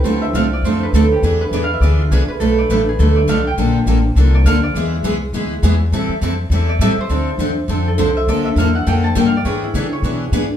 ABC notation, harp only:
X:1
M:4/4
L:1/8
Q:"Swing" 1/4=204
K:Am
V:1 name="Harp"
c e f d c B A G | ^G B (3d f e d F G B | A d B ^G A d f =g- | g4 z d f d |
z8 | z4 z d e c | [K:Dm] z4 z A c e | d e f ^f g a (3g =f d |
^c E ^G c3 z2 |]